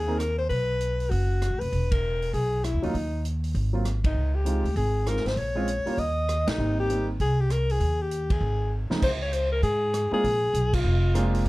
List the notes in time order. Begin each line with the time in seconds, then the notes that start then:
Already playing: D#2 G#4
0.07 A#3 C4 D#4 A#4
0.18 A#4, cross-stick, closed hi-hat
0.38 C5
0.49 B1 B4, kick, open hi-hat
0.81 closed hi-hat
1.00 open hi-hat
1.10 F#1 F#4, kick, open hi-hat
1.42 cross-stick, closed hi-hat
1.50 A1
1.60 F1 B4, open hi-hat
1.72 E1, kick, open hi-hat
1.91 A#4, kick, ride
2.22 open hi-hat
2.33 B1 G#4, kick, open hi-hat
2.64 E4, cross-stick, closed hi-hat
2.74 D#2
2.82 D2 F#3 A#3 C#4 D#4 F4, open hi-hat
2.94 D#2, kick, open hi-hat
3.25 closed hi-hat
3.44 open hi-hat
3.55 G#1, kick, open hi-hat
3.73 F#3 A#3 C4 F4
3.85 cross-stick, closed hi-hat
4.04 D#4, kick, ride
4.14 C#2
4.35 G4
4.45 G#3 C4 D#4 F4, closed hi-hat
4.64 D2, open hi-hat
4.76 G#1 G#4, kick, open hi-hat
5.06 G#3 C4 D#4 F4 A#4, cross-stick, closed hi-hat
5.17 snare
5.25 G#1 C5, snare, open hi-hat
5.36 A#1 C#5, kick, open hi-hat
5.55 G#3 C4 C#4 F4
5.68 closed hi-hat
5.85 G3 A#3 C#4 F4, muted upright bass stroke, open hi-hat
5.97 D#2 D#5, kick, open hi-hat
6.29 cross-stick, closed hi-hat
6.47 A#1 D#4, snare, ride
6.58 G#1 G3 A#3 C4 D#4
6.80 G4
6.89 G3 A#3 C4 D#4, closed hi-hat
7.20 C2 G#4, kick, open hi-hat
7.40 G4
7.50 A#4, cross-stick, closed hi-hat
7.70 G#4, open hi-hat
7.80 D#2, kick, open hi-hat
8.01 G4
8.11 closed hi-hat
8.30 G#4, kick, ride
8.41 G#1
8.90 C#2 F3 G#3 C4 D#4, muted upright bass stroke, snare
9.02 C#2 C5, kick, crash
9.22 C#5
9.33 C5, closed hi-hat
9.52 A#4
9.62 G#2 G#4, kick, open hi-hat
9.94 cross-stick, closed hi-hat
10.11 G#3 A#3 C4 D4 F4 G#4, muted upright bass stroke
10.24 A#1, kick, open hi-hat
10.53 B1, closed hi-hat
10.73 F4, kick, crash
10.84 F1
11.15 G#3 A#3 C4 D4 F4, cross-stick, closed hi-hat
11.34 open hi-hat
11.45 A1, kick, open hi-hat